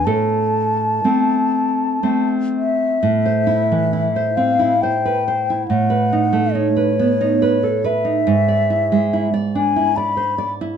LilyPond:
<<
  \new Staff \with { instrumentName = "Flute" } { \time 3/4 \key a \minor \tempo 4 = 69 a''2~ a''8 e''8~ | e''4. f''8 g''4 | fis''4 cis''4. e''8~ | e''4. gis''8 b''8 r8 | }
  \new Staff \with { instrumentName = "Nylon-string guitar" } { \time 3/4 \key a \minor << { a'2~ a'8 r8 | r2. | r2. | r2. | } \\ { a,4 <a c'>4 <a c'>4 | a,16 c''16 e'16 e16 e'16 c''16 c'16 e'16 c''16 b'16 c''16 e'16 | a,16 b'16 dis'16 a16 dis'16 b'16 b16 dis'16 b'16 a'16 b'16 dis'16 | gis,16 d''16 e'16 gis16 e'16 d''16 d'16 e'16 d''16 c''16 d''16 e'16 | } >> }
>>